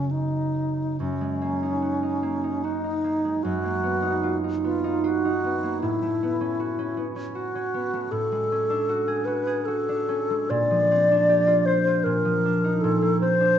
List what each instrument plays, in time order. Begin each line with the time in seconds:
Already playing: harp F#2 C#3 D#4 F#4, alto flute C#4
0.11 alto flute D#4
1.00 harp F#2, alto flute C#4
1.21 harp G#3
1.42 harp A#3
1.63 harp D#4
1.82 harp F#4
2.03 harp D#4
2.23 harp A#3
2.44 harp D#4
2.64 alto flute D#4, harp F#4
2.84 harp D#4
3.04 harp A#3
3.25 harp G#3
3.43 harp F#2, alto flute F#4
3.64 harp A#3
3.83 harp B3
4.02 harp D#4
4.23 harp F4
4.44 harp D#4
4.64 harp B3, alto flute F4
4.84 harp D#4
5.04 harp F4, alto flute F#4
5.25 harp D#4
5.44 harp B3
5.63 harp A#3
5.81 harp A2, alto flute E4
6.02 harp A3
6.23 harp B3
6.41 harp C#4
6.60 harp F#4
6.79 harp C#4
6.97 harp B3
7.16 harp C#4
7.35 alto flute F#4, harp F#4
7.55 harp C#4
7.74 harp B3
7.93 harp A3
8.11 harp A2, alto flute A4
8.32 harp G#3
8.52 harp C#4
8.70 harp D4
8.89 harp F#4
9.08 harp G#4
9.25 harp F#4, alto flute B4
9.47 harp G#4
9.65 harp F#4, alto flute A4
9.89 harp D4
10.09 harp C#4
10.30 harp G#3
10.50 harp A#2, alto flute D5
10.71 harp F3
10.91 harp C4
11.11 harp D4
11.29 harp G4
11.47 harp F4
11.66 alto flute C5, harp C5
11.87 harp F4
12.04 harp A#2, alto flute A#4
12.25 harp F3
12.45 harp D4
12.64 harp D#4
12.81 harp A#2, alto flute A4
13.02 harp A#3
13.21 harp C4, alto flute C5
13.41 harp D4